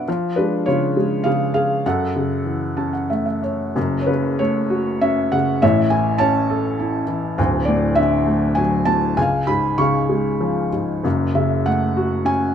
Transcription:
felt piano
0.08 F3
0.36 G#3 D4 B4
0.66 C#3 F4 C#5
0.97 G#3
1.24 C#3 G#4 F5
1.54 G#4 F5
1.86 F#2 A4 F#5
2.16 C#3
2.45 E3
2.77 C#4 A5
2.93 F#5
3.10 A3 E5
3.26 E5
3.43 C#5
3.76 F#1 F#2
4.01 C#5
4.07 C#3 B4
4.39 A3 C#5
4.70 F#4
5.01 C#4 E5
5.32 C#3 F#5
5.62 A1 A2 C#5 E5
5.90 E3 G#5
6.18 C#4 C#5 A5
6.50 A4
6.80 E4
7.08 E3
7.38 D1 D2
7.65 A2 D5
7.95 D3 E5
8.26 A3
8.55 F#3 G#5
8.85 A2 A5
9.17 C#2 G#5
9.22 F5
9.47 G#2 B5
9.78 C#3 F5 C#6
10.09 G#3
10.41 F3
10.73 G#2
11.04 F#1 F#2
11.35 C#3 E5
11.65 A3 F#5
11.97 F#4
12.25 C#4 G#5

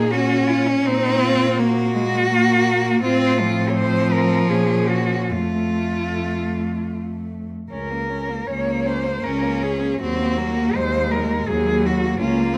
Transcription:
cello
Already playing: A#2 A#3 D#4 G#4
0.11 C#4 F#4
0.48 F4
0.68 C#4
0.85 A#2 C4 D#4
1.21 F4
1.57 A#3 F#4
1.94 G#3
2.29 A#3
3.03 A2 C4 F4
3.41 F3 C4
3.69 C#5
3.76 C5
4.13 A#4
4.49 A#2 C#4 G#4
4.89 F#4
5.30 F2 A3 F4
7.71 C#2 C#4 A#4
7.91 A#3
8.09 C#4
8.29 A#3
8.47 C#2 A#3 C#4 C#5
8.66 A#3
8.86 C#4 C5
9.05 A#3
9.23 C#2 C#4 A#4
9.42 A#3
9.63 C#4 G#4
9.81 A#3
10.00 D#2 F#3 C4 F#4
10.20 A#3
10.38 F#3 A#3
10.56 A#3
10.75 D#2 F#3 G#3 C5
10.93 A#3
11.10 F#3 A#4
11.29 A#3
11.47 D#2 F#3 G#4
11.67 A#3
11.84 F#3 F#4
12.03 A#3
12.19 C#2 A#3 C#4 F4
12.39 A#3
12.54 C4

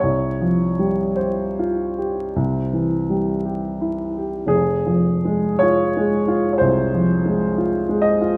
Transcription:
upright piano
0.00 C2 C#5
0.41 F3
0.79 G3
1.16 G4 C5
1.59 F4
1.98 G4
2.36 C2
2.73 E3
3.10 G3
3.45 G4
3.81 E4
4.17 G4
4.46 F1 G#4
4.86 F3
5.25 G#3
5.59 F4 C#5
5.97 G#3
6.28 F4
6.53 C#5
6.58 C2 C5
6.94 F3
7.26 G#3
7.58 F4
7.89 G#3
8.02 D#5
8.21 F4

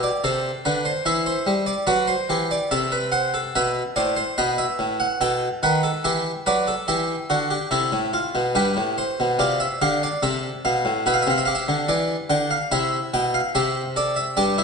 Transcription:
harpsichord
0.03 D5
0.24 C3 A4 C5
0.65 D3 B4
0.85 C5
1.06 E3 E4 E5
1.26 C5
1.46 G3
1.66 D5
1.87 F#3 F#4 B4
2.07 C5
2.29 E3 G4
2.51 D5
2.71 C3 A4 E5
2.92 B4
3.12 C5 F#5
3.34 A4
3.55 B2 B4 E5
3.96 A2 C5 D5
4.16 C5
4.38 B2 B4 D#5
4.58 E5
4.79 A2
5.00 F#5
5.21 B2 A4 G5
5.63 D#3 B4 F#5
5.83 A4
6.04 E3 G4 E5
6.46 F#3 B4 D5
6.67 A4
6.88 E3 G4 E5
7.30 D3 F#4
7.50 G4
7.71 C3 E4 A4
7.92 A2
8.13 F4
8.35 B2
8.55 G2 G4 B4
8.77 A2
8.98 C5
9.20 B2
9.39 C3 F4 D5
9.60 E5
9.82 D3 G4 F5
10.03 D5
10.23 C3 A4 E5
10.65 B2 F5
10.85 A2
11.06 B2 B4 E5
11.14 F5
11.22 E5
11.27 C3 F5
11.38 E5
11.45 G4 F5
11.55 E5
11.68 D3
11.88 E3 D5
12.30 D3 G5
12.51 F5
12.72 C3 E4 E5
13.14 B2 G5
13.34 F5
13.55 C3 G4 E5
13.96 A4 D5
14.16 E5
14.37 G2 G4 D5
14.58 E4

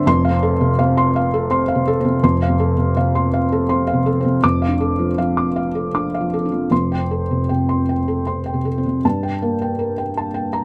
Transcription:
felt piano
0.06 F1 F2 C6
0.25 F5
0.30 C4
0.43 A4
0.61 C3
0.79 C3 F5
0.97 C6
1.16 F5
1.34 A4
1.51 C4 C6
1.68 F5
1.75 C3
1.88 A4
2.00 C4
2.05 C3
2.23 F1 F2 C6
2.42 F5
2.49 C3
2.59 A4
2.77 C3
2.97 C3 F5
3.15 C6
3.34 F5
3.52 A4
3.69 C4 C6
3.87 F5
3.94 C3
4.06 A4
4.21 C3 C4
4.42 F1 F2 D6
4.62 F5
4.68 D4
4.80 A4
4.99 F3
5.18 F3 F5
5.37 D6
5.56 F5
5.75 A4
5.95 D4 D6
6.14 F5
6.21 F3
6.34 A4
6.45 D4
6.52 F3
6.70 F1 F2 C6
6.92 G5
6.98 C4
7.11 A4
7.31 C3
7.49 C3 G5
7.69 C6
7.89 G5
8.08 A4
8.27 C4 C6
8.46 G5
8.54 C3
8.65 A4
8.78 C4
8.86 C3
9.05 G2 A5
9.23 G5
9.42 A#3 A#4
9.62 G5
9.79 A#4
9.98 G5
10.17 A5
10.34 G5
10.53 A#5

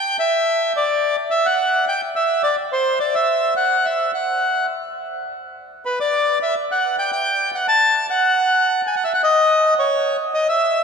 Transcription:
bandoneon
Already playing: G5
0.20 E5
0.77 D5
1.30 E5
1.46 F#5
1.88 G5
2.16 E5
2.43 D5
2.73 C5
3.00 D5
3.15 E5
3.57 F#5
3.85 E5
4.14 F#5
5.85 B4
6.00 D5
6.43 E5
6.71 F#5
6.99 G5
7.12 G5
7.55 F#5
7.68 A5
8.10 F#5
8.87 G#5
8.96 F#5
9.04 E5
9.14 F#5
9.24 D#5
9.79 C#5
10.34 D#5
10.49 E5

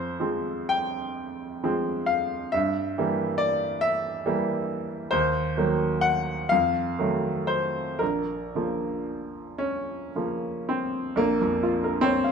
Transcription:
grand piano
Already playing: F2 C5
0.20 F3 G#3 C4
0.69 G5
1.64 F3 G#3 C4
2.06 F5
2.52 G2 E5
2.98 E3 G3 A#3
3.38 D5
3.81 E5
4.26 E3 G3 A#3
5.11 D#2 C5
5.57 D#3 F#3 A#3
6.01 F#5
6.49 F2 F5
6.99 D#3 F#3 A3
7.47 C5
7.99 A#1 A#4
8.55 C#3 F3 A#3
9.58 C#4
10.16 C#3 F3 A#3
10.69 C4
11.16 A#1 A#3
11.41 F2
11.63 F4
11.84 A#4
12.01 C4 C#5
12.24 F5

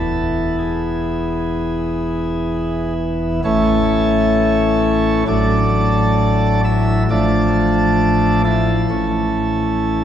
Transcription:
pipe organ
Already playing: E1 E2 E3 B3 E4 A4
0.59 G#4
3.44 A1 A2 E3 A3 C#4 E4 A4 C#5
5.27 A1 A2 F#3 A3 D4 A4 D5
6.64 E4 E5
7.10 A1 A2 F3 A3 D4 A4 D5
8.45 A3 E4 A4
8.90 A1 A2 E3 A3 C#4

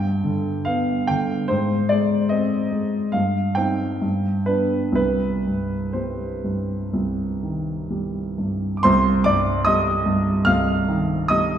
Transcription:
grand piano
Already playing: G2 G5
0.24 D3
0.65 B3 F5
1.07 D3 G5
1.48 G#2 C5
1.89 G#3 D5
2.29 C4 D#5
2.72 G#3
3.12 G2 F5
3.55 C4 D#4 G5
4.01 G2
4.46 B3 D4 B4
4.92 C2 B4
5.47 G2
5.93 G3 C5
6.44 G2
6.93 C2
7.43 D#3
7.91 G3
8.38 G2
8.77 D6
8.83 C2 C5 C6
9.24 G2 D5 D6
9.65 G3 D#5 D#6
10.06 G2
10.45 C2 F5 F6
10.88 D#3
11.28 G3 D#5 D#6

